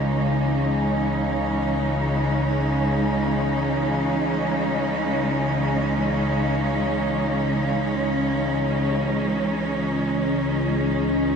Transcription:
0, 0, Header, 1, 4, 480
1, 0, Start_track
1, 0, Key_signature, 4, "minor"
1, 0, Tempo, 500000
1, 10904, End_track
2, 0, Start_track
2, 0, Title_t, "Ambient pad"
2, 0, Program_c, 0, 92
2, 8572, Note_on_c, 0, 56, 83
2, 8574, Note_on_c, 0, 68, 76
2, 10904, Note_off_c, 0, 56, 0
2, 10904, Note_off_c, 0, 68, 0
2, 10904, End_track
3, 0, Start_track
3, 0, Title_t, "Cello section"
3, 0, Program_c, 1, 48
3, 0, Note_on_c, 1, 52, 48
3, 0, Note_on_c, 1, 56, 67
3, 0, Note_on_c, 1, 61, 73
3, 0, Note_on_c, 1, 63, 54
3, 10904, Note_off_c, 1, 52, 0
3, 10904, Note_off_c, 1, 56, 0
3, 10904, Note_off_c, 1, 61, 0
3, 10904, Note_off_c, 1, 63, 0
3, 10904, End_track
4, 0, Start_track
4, 0, Title_t, "Synth drone"
4, 0, Program_c, 2, 95
4, 0, Note_on_c, 2, 37, 70
4, 0, Note_on_c, 2, 49, 75
4, 8563, Note_off_c, 2, 49, 0
4, 8573, Note_off_c, 2, 37, 0
4, 8574, Note_on_c, 2, 49, 75
4, 8584, Note_on_c, 2, 37, 73
4, 10904, Note_off_c, 2, 37, 0
4, 10904, Note_off_c, 2, 49, 0
4, 10904, End_track
0, 0, End_of_file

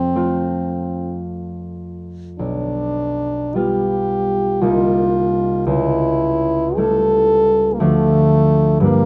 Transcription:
0, 0, Header, 1, 3, 480
1, 0, Start_track
1, 0, Tempo, 1119403
1, 1024, Time_signature, 3, 2, 24, 8
1, 1025, Tempo, 1156069
1, 1505, Tempo, 1058201
1, 2465, Tempo, 1111111
1, 2945, Tempo, 1023891
1, 4013, End_track
2, 0, Start_track
2, 0, Title_t, "French horn"
2, 0, Program_c, 0, 60
2, 0, Note_on_c, 0, 60, 57
2, 540, Note_off_c, 0, 60, 0
2, 1024, Note_on_c, 0, 62, 56
2, 1508, Note_on_c, 0, 67, 55
2, 1514, Note_off_c, 0, 62, 0
2, 1992, Note_on_c, 0, 65, 54
2, 1999, Note_off_c, 0, 67, 0
2, 2465, Note_off_c, 0, 65, 0
2, 2468, Note_on_c, 0, 64, 58
2, 2941, Note_on_c, 0, 69, 68
2, 2948, Note_off_c, 0, 64, 0
2, 3395, Note_on_c, 0, 58, 38
2, 3403, Note_off_c, 0, 69, 0
2, 3422, Note_on_c, 0, 57, 68
2, 3429, Note_off_c, 0, 58, 0
2, 3903, Note_off_c, 0, 57, 0
2, 3905, Note_on_c, 0, 58, 72
2, 4013, Note_off_c, 0, 58, 0
2, 4013, End_track
3, 0, Start_track
3, 0, Title_t, "Harp"
3, 0, Program_c, 1, 46
3, 0, Note_on_c, 1, 41, 30
3, 0, Note_on_c, 1, 60, 33
3, 63, Note_off_c, 1, 60, 0
3, 65, Note_on_c, 1, 57, 28
3, 68, Note_on_c, 1, 60, 27
3, 70, Note_on_c, 1, 65, 29
3, 1026, Note_on_c, 1, 35, 31
3, 1044, Note_off_c, 1, 41, 0
3, 1044, Note_off_c, 1, 57, 0
3, 1045, Note_off_c, 1, 60, 0
3, 1505, Note_on_c, 1, 55, 27
3, 1506, Note_off_c, 1, 65, 0
3, 1510, Note_on_c, 1, 59, 26
3, 1511, Note_on_c, 1, 65, 29
3, 1983, Note_off_c, 1, 55, 0
3, 1989, Note_on_c, 1, 36, 38
3, 1990, Note_on_c, 1, 55, 28
3, 1992, Note_on_c, 1, 58, 27
3, 1996, Note_on_c, 1, 63, 28
3, 2010, Note_off_c, 1, 35, 0
3, 2012, Note_off_c, 1, 59, 0
3, 2013, Note_off_c, 1, 65, 0
3, 2466, Note_on_c, 1, 37, 36
3, 2482, Note_off_c, 1, 36, 0
3, 2484, Note_off_c, 1, 58, 0
3, 2485, Note_off_c, 1, 63, 0
3, 2938, Note_off_c, 1, 55, 0
3, 2943, Note_on_c, 1, 55, 32
3, 2948, Note_on_c, 1, 57, 34
3, 2949, Note_on_c, 1, 64, 30
3, 3422, Note_off_c, 1, 57, 0
3, 3426, Note_on_c, 1, 38, 42
3, 3426, Note_on_c, 1, 53, 33
3, 3428, Note_on_c, 1, 57, 33
3, 3431, Note_on_c, 1, 62, 32
3, 3445, Note_off_c, 1, 55, 0
3, 3447, Note_off_c, 1, 37, 0
3, 3448, Note_off_c, 1, 64, 0
3, 3895, Note_on_c, 1, 43, 49
3, 3900, Note_off_c, 1, 62, 0
3, 3905, Note_on_c, 1, 55, 34
3, 3914, Note_on_c, 1, 62, 33
3, 3924, Note_off_c, 1, 53, 0
3, 3925, Note_off_c, 1, 38, 0
3, 3926, Note_off_c, 1, 57, 0
3, 4013, Note_off_c, 1, 43, 0
3, 4013, Note_off_c, 1, 55, 0
3, 4013, Note_off_c, 1, 62, 0
3, 4013, End_track
0, 0, End_of_file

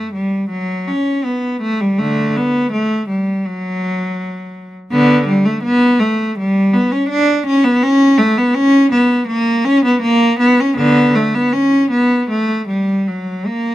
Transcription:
0, 0, Header, 1, 2, 480
1, 0, Start_track
1, 0, Tempo, 732601
1, 1303, Time_signature, 4, 2, 24, 8
1, 6096, Tempo, 748130
1, 8016, Tempo, 785340
1, 8903, End_track
2, 0, Start_track
2, 0, Title_t, "Cello"
2, 0, Program_c, 0, 42
2, 0, Note_on_c, 0, 57, 70
2, 90, Note_on_c, 0, 55, 73
2, 94, Note_off_c, 0, 57, 0
2, 324, Note_on_c, 0, 54, 83
2, 331, Note_off_c, 0, 55, 0
2, 568, Note_off_c, 0, 54, 0
2, 573, Note_on_c, 0, 61, 76
2, 816, Note_on_c, 0, 59, 67
2, 818, Note_off_c, 0, 61, 0
2, 1057, Note_on_c, 0, 57, 83
2, 1059, Note_off_c, 0, 59, 0
2, 1177, Note_off_c, 0, 57, 0
2, 1183, Note_on_c, 0, 55, 76
2, 1302, Note_on_c, 0, 57, 86
2, 1303, Note_off_c, 0, 55, 0
2, 1303, Note_on_c, 0, 50, 77
2, 1527, Note_off_c, 0, 50, 0
2, 1543, Note_off_c, 0, 57, 0
2, 1549, Note_on_c, 0, 59, 91
2, 1781, Note_on_c, 0, 57, 87
2, 1789, Note_off_c, 0, 59, 0
2, 2021, Note_off_c, 0, 57, 0
2, 2023, Note_on_c, 0, 55, 77
2, 2261, Note_off_c, 0, 55, 0
2, 2267, Note_on_c, 0, 54, 86
2, 3107, Note_off_c, 0, 54, 0
2, 3219, Note_on_c, 0, 59, 97
2, 3226, Note_on_c, 0, 50, 86
2, 3443, Note_off_c, 0, 59, 0
2, 3446, Note_off_c, 0, 50, 0
2, 3457, Note_on_c, 0, 55, 86
2, 3574, Note_on_c, 0, 57, 78
2, 3577, Note_off_c, 0, 55, 0
2, 3690, Note_on_c, 0, 59, 102
2, 3697, Note_off_c, 0, 57, 0
2, 3927, Note_on_c, 0, 57, 89
2, 3932, Note_off_c, 0, 59, 0
2, 4177, Note_off_c, 0, 57, 0
2, 4185, Note_on_c, 0, 55, 92
2, 4412, Note_on_c, 0, 59, 83
2, 4418, Note_off_c, 0, 55, 0
2, 4532, Note_on_c, 0, 61, 82
2, 4535, Note_off_c, 0, 59, 0
2, 4646, Note_on_c, 0, 62, 99
2, 4654, Note_off_c, 0, 61, 0
2, 4883, Note_off_c, 0, 62, 0
2, 4891, Note_on_c, 0, 61, 102
2, 5008, Note_on_c, 0, 59, 97
2, 5009, Note_off_c, 0, 61, 0
2, 5128, Note_on_c, 0, 61, 107
2, 5129, Note_off_c, 0, 59, 0
2, 5362, Note_on_c, 0, 57, 98
2, 5370, Note_off_c, 0, 61, 0
2, 5487, Note_off_c, 0, 57, 0
2, 5490, Note_on_c, 0, 59, 90
2, 5600, Note_on_c, 0, 61, 106
2, 5611, Note_off_c, 0, 59, 0
2, 5842, Note_on_c, 0, 59, 86
2, 5846, Note_off_c, 0, 61, 0
2, 6077, Note_on_c, 0, 58, 97
2, 6083, Note_off_c, 0, 59, 0
2, 6317, Note_on_c, 0, 61, 104
2, 6318, Note_off_c, 0, 58, 0
2, 6443, Note_off_c, 0, 61, 0
2, 6446, Note_on_c, 0, 59, 90
2, 6555, Note_on_c, 0, 58, 111
2, 6565, Note_off_c, 0, 59, 0
2, 6796, Note_off_c, 0, 58, 0
2, 6796, Note_on_c, 0, 59, 103
2, 6919, Note_off_c, 0, 59, 0
2, 6927, Note_on_c, 0, 61, 98
2, 7034, Note_on_c, 0, 59, 105
2, 7035, Note_on_c, 0, 50, 95
2, 7047, Note_off_c, 0, 61, 0
2, 7265, Note_off_c, 0, 50, 0
2, 7277, Note_off_c, 0, 59, 0
2, 7282, Note_on_c, 0, 57, 92
2, 7406, Note_off_c, 0, 57, 0
2, 7407, Note_on_c, 0, 59, 91
2, 7525, Note_on_c, 0, 61, 97
2, 7529, Note_off_c, 0, 59, 0
2, 7767, Note_on_c, 0, 59, 91
2, 7768, Note_off_c, 0, 61, 0
2, 8007, Note_off_c, 0, 59, 0
2, 8017, Note_on_c, 0, 57, 89
2, 8246, Note_off_c, 0, 57, 0
2, 8249, Note_on_c, 0, 55, 82
2, 8483, Note_off_c, 0, 55, 0
2, 8495, Note_on_c, 0, 54, 76
2, 8727, Note_on_c, 0, 58, 89
2, 8733, Note_off_c, 0, 54, 0
2, 8903, Note_off_c, 0, 58, 0
2, 8903, End_track
0, 0, End_of_file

